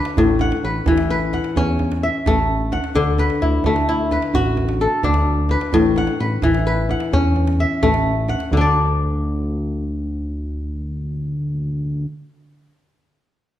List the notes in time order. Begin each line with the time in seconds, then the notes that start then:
Already playing: D4 F#4 A4 B4
0.05 djembe slap
0.17 A1 A2, djembe bass
0.28 djembe slap
0.39 F#5, djembe tone
0.52 djembe slap
0.64 A1 B4
0.76 djembe slap
0.86 A1 E3, djembe slap, djembe tone, djembe bass
0.97 djembe slap
1.10 B4
1.22 djembe slap
1.33 F#5, djembe tone
1.44 djembe slap
1.56 E2 C#4, djembe bass
1.68 djembe slap
1.79 djembe tone
1.92 djembe slap
2.03 E5
2.26 A1 A3, djembe tone, djembe bass
2.60 djembe slap
2.72 F#5, djembe tone
2.84 djembe slap
2.95 D2 D3, djembe bass
3.07 djembe slap
3.18 B4, djembe tone
3.30 djembe slap
3.42 D2 E4
3.53 djembe slap
3.64 D2 A3, djembe slap, djembe tone, djembe bass
3.76 djembe slap
3.89 E4
3.99 djembe slap
4.11 B4, djembe tone
4.22 djembe slap
4.34 A1 F#4, djembe bass
4.47 djembe slap
4.57 djembe tone
4.69 djembe slap
4.81 A4
5.03 D2 D4, djembe tone, djembe bass
5.14 djembe slap
5.38 djembe slap
5.49 B4, djembe tone
5.61 djembe slap
5.73 A1 A2, djembe bass
5.96 F#5, djembe tone
6.07 djembe slap
6.19 A1 B4, djembe slap
6.42 A1 E3, djembe tone, djembe bass
6.54 djembe slap
6.67 B4
6.89 F#5, djembe tone
7.00 djembe slap
7.13 E2 C#4, djembe bass
7.36 djembe tone
7.47 djembe slap
7.60 E5
7.83 A1 A3, djembe slap, djembe tone, djembe bass
7.94 djembe slap
8.28 F#5, djembe tone
8.40 djembe slap
8.52 D2 D3, djembe bass
8.57 D4 D5